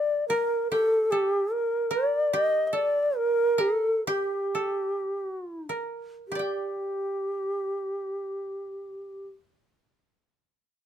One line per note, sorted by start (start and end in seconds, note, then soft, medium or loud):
0.00 0.71 G4 medium
0.00 0.36 A4 medium
0.00 0.27 D5 medium
0.28 0.68 A#4 medium
0.28 1.18 A#4 medium
0.71 2.33 G4 medium
0.71 1.12 A4 medium
1.11 1.54 G4 medium
1.11 1.97 A4 medium
1.52 1.93 A#4 medium
1.91 2.79 A#4 medium
1.91 2.35 D5 medium
2.33 4.07 G4 medium
2.33 2.67 D#5 loud
2.67 2.75 D#5 medium
2.73 3.64 A4 medium
2.73 3.19 D5 loud
3.17 3.62 A#4 loud
3.58 4.05 A4 medium
3.58 4.61 A#4 medium
4.07 5.63 G4 medium
4.07 6.11 G4 medium
4.55 5.75 A4 medium
5.69 7.53 A#4 medium
6.28 9.28 G4 medium
6.28 9.32 G4 soft
6.35 9.35 D5 soft
6.35 9.39 G5 soft